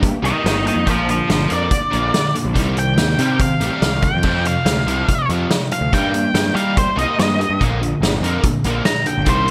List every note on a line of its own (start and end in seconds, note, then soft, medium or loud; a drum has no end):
0.00 0.13 G2 medium
0.00 0.21 G3 medium
0.00 0.21 A#3 medium
0.00 kick loud
0.00 closed hi-hat loud
0.22 0.31 C2 medium
0.22 0.43 G3 medium
0.22 0.43 A#3 medium
0.22 0.43 D#4 medium
0.22 0.45 A#4 medium
0.22 0.45 G5 medium
0.22 closed hi-hat medium
0.44 0.69 G1 medium
0.44 0.63 G3 medium
0.44 0.64 A#3 medium
0.44 0.65 A#4 medium
0.44 0.66 G5 medium
0.44 snare loud
0.44 closed hi-hat loud
0.65 0.84 G3 medium
0.65 0.84 A#3 medium
0.65 0.86 A#4 medium
0.65 0.87 G5 medium
0.65 closed hi-hat medium
0.76 0.84 F2 medium
0.86 1.20 A#1 medium
0.86 1.06 A#2 medium
0.86 1.06 D3 medium
0.86 1.07 A#3 loud
0.86 1.08 C5 medium
0.86 kick medium
0.86 closed hi-hat medium
0.90 1.09 F5 medium
1.07 1.26 A#2 medium
1.07 1.27 D3 medium
1.07 1.29 C5 medium
1.07 1.30 F5 medium
1.07 closed hi-hat medium
1.28 1.45 G1 medium
1.28 1.47 A#2 medium
1.28 1.48 D3 medium
1.28 snare loud
1.28 closed hi-hat loud
1.32 1.50 C5 medium
1.32 1.51 F5 medium
1.49 1.67 F2 medium
1.49 1.69 A#2 medium
1.49 1.69 D3 medium
1.49 1.69 A#3 medium
1.49 closed hi-hat medium
1.53 2.33 D5 loud
1.70 1.89 A#2 medium
1.70 1.90 D3 medium
1.70 kick loud
1.70 closed hi-hat loud
1.90 2.09 A#1 loud
1.90 2.11 A#2 medium
1.90 2.11 D3 loud
1.90 2.11 A#3 loud
1.90 closed hi-hat medium
2.12 2.31 A#2 medium
2.12 2.32 D3 medium
2.12 snare loud
2.12 closed hi-hat loud
2.34 2.53 A#2 medium
2.34 2.53 D3 medium
2.34 closed hi-hat medium
2.45 2.53 A#1 medium
2.53 2.99 C2 loud
2.53 2.74 C3 medium
2.53 2.74 D#3 medium
2.53 2.75 G3 loud
2.53 kick medium
2.53 closed hi-hat medium
2.77 2.96 C3 medium
2.77 2.96 D#3 medium
2.77 3.39 G5 medium
2.77 closed hi-hat medium
2.98 3.14 D#2 medium
2.98 3.16 C3 medium
2.98 3.16 D#3 medium
2.98 snare loud
2.98 closed hi-hat loud
3.18 3.38 C3 medium
3.18 3.51 C3 medium
3.18 3.38 D#3 medium
3.18 3.39 G3 medium
3.18 closed hi-hat medium
3.39 3.58 C3 medium
3.39 3.58 D#3 medium
3.39 4.01 F5 medium
3.39 kick loud
3.39 closed hi-hat loud
3.60 3.69 A1 medium
3.60 3.80 C3 medium
3.60 3.81 D#3 medium
3.60 3.81 G3 loud
3.60 closed hi-hat medium
3.82 4.06 C2 medium
3.82 4.01 C3 medium
3.82 4.01 D#3 medium
3.82 snare loud
3.82 closed hi-hat medium
4.02 4.21 C3 medium
4.02 4.22 D#3 medium
4.02 4.44 G5 loud
4.02 kick medium
4.02 closed hi-hat medium
4.15 4.22 F2 medium
4.23 4.43 F2 medium
4.23 4.56 F2 medium
4.23 4.44 C3 medium
4.23 4.44 F3 loud
4.23 kick medium
4.23 crash medium
4.44 4.63 F2 medium
4.44 4.64 C3 medium
4.44 5.27 F5 medium
4.44 closed hi-hat medium
4.65 4.81 D2 medium
4.65 4.84 F2 medium
4.65 4.84 C3 medium
4.65 snare loud
4.65 closed hi-hat loud
4.86 5.02 C2 medium
4.86 5.06 F2 medium
4.86 5.06 C3 loud
4.86 5.07 F3 loud
4.86 closed hi-hat medium
5.09 5.27 F2 medium
5.09 5.27 C3 medium
5.09 kick loud
5.09 closed hi-hat loud
5.29 5.48 F2 medium
5.29 5.45 F2 medium
5.29 5.49 C3 medium
5.29 5.49 F3 medium
5.29 closed hi-hat medium
5.50 5.69 F2 medium
5.50 5.69 C3 medium
5.50 snare loud
5.50 closed hi-hat loud
5.71 5.90 F2 medium
5.71 5.90 C3 medium
5.71 5.92 F5 loud
5.71 closed hi-hat medium
5.81 5.89 D2 medium
5.93 6.25 G2 loud
5.93 6.12 G3 medium
5.93 6.12 A#3 medium
5.93 6.12 D#4 medium
5.93 6.54 G5 medium
5.93 kick medium
5.93 closed hi-hat medium
6.14 6.32 G3 medium
6.14 6.32 A#3 medium
6.14 closed hi-hat medium
6.34 6.50 G2 loud
6.34 6.53 G3 medium
6.34 6.53 A#3 medium
6.34 snare loud
6.34 closed hi-hat loud
6.54 6.74 G3 loud
6.54 6.87 G3 loud
6.54 6.74 A#3 loud
6.54 6.74 D#4 loud
6.54 6.75 F5 loud
6.54 closed hi-hat medium
6.76 6.95 G3 medium
6.76 6.95 A#3 medium
6.76 6.97 C5 medium
6.76 kick loud
6.76 closed hi-hat loud
6.96 7.05 C2 medium
6.96 7.16 G3 medium
6.96 7.16 A#3 medium
6.96 7.16 D#4 medium
6.96 7.18 D#5 medium
6.96 closed hi-hat medium
7.17 7.43 G2 medium
7.17 7.36 G3 medium
7.17 7.36 A#3 medium
7.17 7.59 D#5 loud
7.17 snare loud
7.17 closed hi-hat medium
7.39 7.57 G3 medium
7.39 7.57 A#3 medium
7.39 closed hi-hat medium
7.50 7.57 G2 medium
7.60 7.93 A#1 medium
7.60 7.79 A#2 medium
7.60 7.79 D3 medium
7.60 7.80 A#3 medium
7.60 kick medium
7.60 closed hi-hat medium
7.81 7.99 A#2 medium
7.81 8.00 D3 medium
7.81 closed hi-hat medium
8.01 8.17 G1 medium
8.01 8.20 A#2 medium
8.01 8.21 D3 medium
8.01 snare loud
8.01 closed hi-hat medium
8.21 8.37 F2 loud
8.21 8.42 A#2 medium
8.21 8.42 D3 medium
8.21 8.42 A#3 loud
8.21 closed hi-hat medium
8.43 8.62 A#2 medium
8.43 8.63 D3 medium
8.43 kick loud
8.43 closed hi-hat loud
8.64 8.80 A#1 loud
8.64 8.84 A#2 loud
8.64 8.84 D3 medium
8.64 8.84 A#3 loud
8.64 closed hi-hat medium
8.85 9.04 A#2 medium
8.85 9.03 D3 medium
8.85 9.05 A#5 loud
8.85 snare loud
8.85 closed hi-hat medium
9.06 9.24 A#2 medium
9.06 9.24 D3 medium
9.06 9.26 G5 medium
9.06 closed hi-hat medium
9.18 9.25 G1 loud
9.25 9.51 C2 loud
9.25 9.45 C3 loud
9.25 9.45 D#3 loud
9.25 9.46 G3 loud
9.25 kick loud
9.25 closed hi-hat medium
9.30 9.48 C5 medium
9.46 9.51 C3 medium
9.46 9.51 D#3 medium